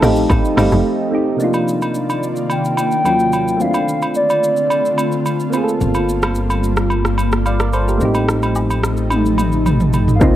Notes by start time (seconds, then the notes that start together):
Already playing: F3 A3 D#4 A5
0.01 A1 A3 C4 D#4 G4 A4 D#5 F5, cross-stick, open hi-hat, shaker
0.16 shaker
0.30 A1, kick, high agogo, shaker
0.45 shaker
0.56 G1 A3 C4 D#4 G4 A4 D#5 F5, cross-stick, open hi-hat, high agogo, shaker
0.72 F1, shaker
1.11 A3 C4 D#4 G4
1.37 C3 D#3 A#3 D4 F4 D5, shaker
1.42 D#4 F4
1.54 high agogo, shaker
1.68 shaker
1.82 high agogo, shaker
1.95 shaker
2.10 high agogo, shaker
2.23 shaker
2.36 shaker
2.50 G5, high agogo, shaker
2.65 shaker
2.77 high agogo, shaker
2.92 shaker
3.04 D#2 F#3 A#3 C#4 F4, high agogo, shaker
3.20 shaker
3.33 high agogo, shaker
3.48 shaker
3.57 D3 A3 C4 F4, shaker
3.61 D4 E4 F5
3.71 F4, high agogo, shaker
3.89 shaker
4.02 high agogo, shaker
4.15 D5, shaker
4.30 high agogo, shaker
4.44 shaker
4.57 shaker
4.70 high agogo, shaker
4.85 shaker
4.98 high agogo, shaker
5.12 shaker
5.26 high agogo, shaker
5.40 shaker
5.50 G3 A#3 C4, high agogo, shaker
5.55 F4 G#4
5.64 A4
5.68 shaker
5.81 G1, shaker
5.94 high agogo, shaker
6.09 shaker
6.22 cross-stick, high agogo, shaker
6.35 shaker
6.50 high agogo, shaker
6.64 shaker
6.77 cross-stick, shaker
6.90 high agogo, shaker
7.05 cross-stick, shaker
7.18 high agogo, shaker
7.32 cross-stick, shaker
7.46 D5 F5, high agogo, shaker
7.60 A#4 D5, cross-stick, shaker
7.73 A4 C5, high agogo, shaker
7.88 G4 A#4, shaker
7.98 A1 F3 A3 C4 D#4, shaker
8.03 D#4 G4
8.15 high agogo, shaker
8.29 cross-stick, shaker
8.43 high agogo, shaker
8.55 low woodblock, shaker
8.70 high agogo, shaker
8.83 cross-stick, shaker
8.97 shaker
9.10 high tom, high agogo, shaker
9.26 shaker
9.38 mid tom, high agogo, shaker
9.52 shaker
9.66 mid tom, high agogo, shaker
9.80 mid tom, shaker
9.93 floor tom, high agogo, shaker
10.08 floor tom, shaker
10.15 F5
10.20 C2 C3 D#3 A#3 C4 D#4 F4 D#5, kick, shaker